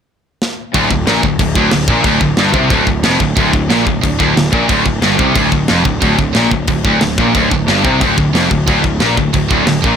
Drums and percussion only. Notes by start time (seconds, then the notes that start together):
0.42 snare
0.74 kick, crash
0.91 kick
1.07 snare, crash
1.23 kick
1.39 kick, crash
1.55 kick
1.71 snare, crash
1.88 kick
2.04 kick, crash
2.21 kick
2.37 snare, crash
2.54 kick
2.70 kick, crash
2.87 kick
3.04 snare, crash
3.20 kick
3.37 kick, crash
3.53 kick
3.70 snare, crash
3.87 kick
4.04 kick, crash
4.20 kick
4.37 snare, crash
4.53 kick
4.69 kick, crash
4.86 kick
5.02 snare, crash
5.19 kick
5.36 kick, crash
5.52 kick
5.68 snare, crash
5.85 kick
6.02 kick, crash
6.19 kick
6.35 snare, crash
6.51 kick
6.67 kick, crash
6.85 kick
7.01 snare, crash
7.18 kick
7.35 kick, crash
7.51 kick
7.68 snare, crash
7.85 kick
8.01 kick, crash
8.18 kick
8.35 snare, crash
8.51 kick
8.68 kick, crash
8.84 kick
9.00 snare, crash
9.17 kick
9.33 kick, crash
9.51 kick
9.67 snare, crash
9.84 kick